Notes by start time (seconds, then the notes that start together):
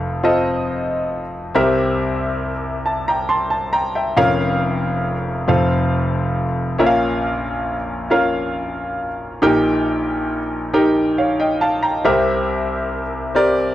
Already playing: F1 F2 C4 F4 A4 F5
0.23 C4 F4 A4 D#5
1.55 C2 C3 C4 G4 A#4 E5
2.86 A5
3.08 G5 A#5
3.29 A5 C6
3.50 A5
3.73 G5 A#5
3.95 E5 G5
4.17 F1 F2 C#4 F4 A#4 F5
5.48 F1 F2 C4 F4 A4 F5
6.78 A#1 A#2 C#4 F4 A#4 E5
6.86 F5
8.10 C#4 F4 A#4 F5
9.42 A#1 A#2 D#4 G4 A#4 G5
10.73 D#4 G4 A#4 G5
11.18 C#5 F5
11.40 D#5 G5
11.61 F5 A5
11.83 G5 A#5
12.04 C2 C3 C4 G4 A#4 E5
13.35 C4 G4 A#4 D5